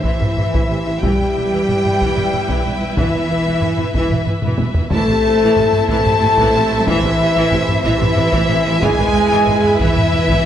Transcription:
Already playing: A3 E4 C5 E5
0.02 A1 E3 E4 E5, taiko
0.20 A1 C3, taiko low-mid
0.37 A1 C3, taiko low-mid
0.52 A1 E3, taiko
0.69 A1 C3
0.86 A1 C3
1.01 E1 E3 G3 B3 E4 G4 B4 E5 G5, taiko
1.19 E1 E3
1.35 E1 E3
1.52 E1 E3
1.69 E1 E3, taiko low-mid
1.84 E1 E3, taiko low-mid
2.01 E1 E3, taiko
2.18 E1 E3, taiko low-mid
2.33 E1 E3, taiko low-mid
2.49 E1 E3, taiko
2.65 E1 E3
2.81 E1 E3
2.97 E1 E3 E4 E5, taiko
3.14 E1 E3
3.29 E1 E3
3.46 E1 E3
3.62 E1 E3, taiko low-mid
3.78 E1 E3, taiko low-mid
3.94 E1 E3 E4 E5, taiko
4.10 E1 E3, taiko low-mid
4.26 E1 E3, taiko low-mid
4.42 E1 E3, taiko low-mid
4.58 E1 E3, taiko high
4.75 E1 E3, taiko low
4.91 A1 E3 A3 C4 E4 A4 C5 E5 A5, taiko
5.08 A1 C3
5.24 A1 C3
5.41 A1 E3
5.56 A1 C3, taiko low-mid
5.72 A1 C3, taiko low-mid
5.88 A1 E3 A3 A4 A5, taiko
6.06 A1 C3, taiko low-mid
6.20 A1 C3, taiko low-mid
6.37 A1 E3, taiko
6.54 A1 C3
6.71 A1 C3
6.86 A1 E3 E4 E5, taiko
7.03 A1 C3
7.20 A1 C3
7.36 A1 E3
7.52 A1 C3, taiko low-mid
7.68 A1 C3, taiko low-mid
7.82 A1 E3 E4 E5, taiko
7.98 A1 C3, taiko low-mid
8.16 A1 C3, taiko low-mid
8.32 A1 E3, taiko
8.49 A1 C3
8.66 A1 C3
8.81 G#1 E3 G#3 B3 E4 G#4 B4 E5 G#5, taiko
8.91 E2
8.98 G#1 E2 E3
9.05 E2
9.13 G#1 E2 E3
9.20 E2
9.27 G#1 E2 E3
9.35 E2
9.43 E2 E3
9.47 G#1 E2, taiko low-mid
9.58 E2
9.62 G#1 E2 E3, taiko low-mid
9.73 E2
9.78 G#1 E2 E3 E4 E5, taiko
9.88 E2
9.96 G#1 E2 E3, taiko low-mid
10.04 E2
10.12 G#1 E2 E3, taiko low-mid
10.19 E2
10.27 G#1 E2 E3, taiko
10.34 E2
10.42 E2

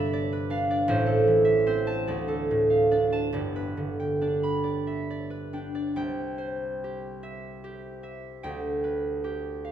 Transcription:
Already playing: G1 G2 D3 D4 B4 D5 E5 F5 B5
0.13 D5
0.33 B4
0.50 D4 F5
0.70 D5
0.88 A1 A2 C5
1.06 A4
1.28 E3
1.45 E5
1.67 C4 C5
1.87 A5
2.07 D2 D5
2.28 A4
2.51 A2
2.70 F5
2.91 D4 D5
3.12 A5
3.33 G1 G2 D5
3.56 B4
3.77 D3
4.00 G5
4.21 D4 D5
4.43 B5
4.64 D5
4.87 E5
5.10 D5
5.30 B4
5.53 D4 G5
5.75 D5
5.96 C2 G5
6.38 C5
6.84 G4
7.23 E5
7.64 G4
8.03 E5
8.43 D2 G5
8.84 B4
9.24 G4
9.65 F5

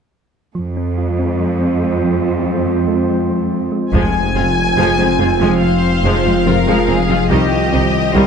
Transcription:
0.55 F2 F3 G#3 C4 F4 C5
0.77 C4
0.98 F4
1.19 C4
1.40 F3
1.61 C4
1.82 G#3
2.04 F3
2.46 F4
2.67 F3
2.88 G#3
3.10 G#3
3.30 F3
3.72 G#3
3.93 F1 F2 F3 G#3 C4 F4 C5 G#5, taiko
4.35 F1 F2 C4 F4
4.76 F1 F2 F3 G#3
4.98 F2 G#3 C4
5.19 F1 F2 G#3 C4 F4
5.40 F2 F3 G#3
5.61 C5 F5
6.04 F1 F2 F3 G#3
6.25 F2 G#3 C4 F4
6.46 F1 F2 G#3 C4 F4 A#4
6.67 F2 F3 G#3
6.87 F1 F2 G#3 C4 G#4
7.09 F2 C4 F4
7.30 C2 C3 D#3 G3 C4 G4 C5 D#5 G5
7.72 C2 G3 C4 D#4
8.14 C2 C3 D#3 G3 F4

